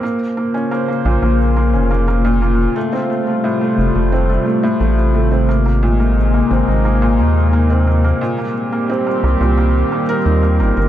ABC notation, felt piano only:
X:1
M:4/4
L:1/16
Q:1/4=88
K:Bbdor
V:1 name="Felt piano"
B, z B, D B, B, B,, B, z B, D B, B, B,, B, z | =A, C A, A, =A,, A, z A, C A, A, A,, A, z A, C | B, B, B,, B, z B, C B, B, B,, B, z B, C B, B, | B,, B, z B, C B, B, B,, B, z B, B E B, B, B |]